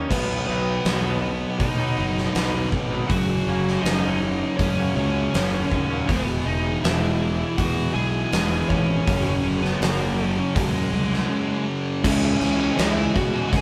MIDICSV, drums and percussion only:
0, 0, Header, 1, 2, 480
1, 0, Start_track
1, 0, Tempo, 745342
1, 70, Time_signature, 4, 2, 24, 8
1, 8767, End_track
2, 0, Start_track
2, 0, Title_t, "Drums"
2, 68, Note_on_c, 9, 36, 98
2, 72, Note_on_c, 9, 49, 106
2, 133, Note_off_c, 9, 36, 0
2, 137, Note_off_c, 9, 49, 0
2, 549, Note_on_c, 9, 46, 52
2, 555, Note_on_c, 9, 38, 108
2, 613, Note_off_c, 9, 46, 0
2, 619, Note_off_c, 9, 38, 0
2, 1030, Note_on_c, 9, 36, 105
2, 1031, Note_on_c, 9, 46, 53
2, 1094, Note_off_c, 9, 36, 0
2, 1095, Note_off_c, 9, 46, 0
2, 1402, Note_on_c, 9, 38, 29
2, 1466, Note_off_c, 9, 38, 0
2, 1514, Note_on_c, 9, 46, 55
2, 1519, Note_on_c, 9, 38, 102
2, 1578, Note_off_c, 9, 46, 0
2, 1584, Note_off_c, 9, 38, 0
2, 1753, Note_on_c, 9, 36, 73
2, 1818, Note_off_c, 9, 36, 0
2, 1995, Note_on_c, 9, 36, 98
2, 1999, Note_on_c, 9, 46, 59
2, 2059, Note_off_c, 9, 36, 0
2, 2063, Note_off_c, 9, 46, 0
2, 2368, Note_on_c, 9, 38, 32
2, 2433, Note_off_c, 9, 38, 0
2, 2482, Note_on_c, 9, 46, 58
2, 2488, Note_on_c, 9, 38, 115
2, 2546, Note_off_c, 9, 46, 0
2, 2552, Note_off_c, 9, 38, 0
2, 2958, Note_on_c, 9, 36, 102
2, 2959, Note_on_c, 9, 46, 58
2, 3022, Note_off_c, 9, 36, 0
2, 3023, Note_off_c, 9, 46, 0
2, 3441, Note_on_c, 9, 46, 55
2, 3447, Note_on_c, 9, 38, 104
2, 3505, Note_off_c, 9, 46, 0
2, 3511, Note_off_c, 9, 38, 0
2, 3681, Note_on_c, 9, 36, 76
2, 3745, Note_off_c, 9, 36, 0
2, 3922, Note_on_c, 9, 36, 110
2, 3922, Note_on_c, 9, 46, 58
2, 3986, Note_off_c, 9, 36, 0
2, 3987, Note_off_c, 9, 46, 0
2, 4407, Note_on_c, 9, 46, 53
2, 4413, Note_on_c, 9, 38, 126
2, 4471, Note_off_c, 9, 46, 0
2, 4477, Note_off_c, 9, 38, 0
2, 4883, Note_on_c, 9, 36, 93
2, 4883, Note_on_c, 9, 46, 54
2, 4947, Note_off_c, 9, 46, 0
2, 4948, Note_off_c, 9, 36, 0
2, 5361, Note_on_c, 9, 46, 54
2, 5367, Note_on_c, 9, 38, 110
2, 5426, Note_off_c, 9, 46, 0
2, 5431, Note_off_c, 9, 38, 0
2, 5604, Note_on_c, 9, 36, 85
2, 5668, Note_off_c, 9, 36, 0
2, 5844, Note_on_c, 9, 36, 116
2, 5847, Note_on_c, 9, 46, 61
2, 5909, Note_off_c, 9, 36, 0
2, 5911, Note_off_c, 9, 46, 0
2, 6212, Note_on_c, 9, 38, 31
2, 6276, Note_off_c, 9, 38, 0
2, 6324, Note_on_c, 9, 46, 59
2, 6330, Note_on_c, 9, 38, 110
2, 6388, Note_off_c, 9, 46, 0
2, 6394, Note_off_c, 9, 38, 0
2, 6800, Note_on_c, 9, 36, 115
2, 6802, Note_on_c, 9, 46, 64
2, 6865, Note_off_c, 9, 36, 0
2, 6866, Note_off_c, 9, 46, 0
2, 7170, Note_on_c, 9, 38, 32
2, 7235, Note_off_c, 9, 38, 0
2, 7756, Note_on_c, 9, 36, 113
2, 7757, Note_on_c, 9, 49, 126
2, 7757, Note_on_c, 9, 57, 90
2, 7820, Note_off_c, 9, 36, 0
2, 7822, Note_off_c, 9, 49, 0
2, 7822, Note_off_c, 9, 57, 0
2, 7994, Note_on_c, 9, 57, 65
2, 8058, Note_off_c, 9, 57, 0
2, 8234, Note_on_c, 9, 57, 81
2, 8240, Note_on_c, 9, 38, 110
2, 8299, Note_off_c, 9, 57, 0
2, 8304, Note_off_c, 9, 38, 0
2, 8473, Note_on_c, 9, 36, 92
2, 8473, Note_on_c, 9, 57, 59
2, 8537, Note_off_c, 9, 36, 0
2, 8538, Note_off_c, 9, 57, 0
2, 8712, Note_on_c, 9, 36, 106
2, 8714, Note_on_c, 9, 57, 80
2, 8767, Note_off_c, 9, 36, 0
2, 8767, Note_off_c, 9, 57, 0
2, 8767, End_track
0, 0, End_of_file